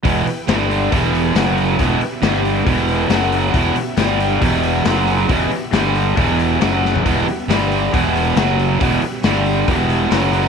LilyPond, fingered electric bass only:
\new Staff \with { instrumentName = "Fingered electric bass" } { \clef bass \time 4/4 \key e \minor \tempo 4 = 137 e,,8 r8 g,,4 e,,4 fis,,4 | e,,8 r8 g,,4 e,,4 fis,,4 | e,,8 r8 g,,4 e,,4 fis,,4 | e,,8 r8 g,,4 e,,4 fis,,4 |
e,,8 r8 g,,4 e,,4 fis,,4 | e,,8 r8 g,,4 e,,4 fis,,4 | }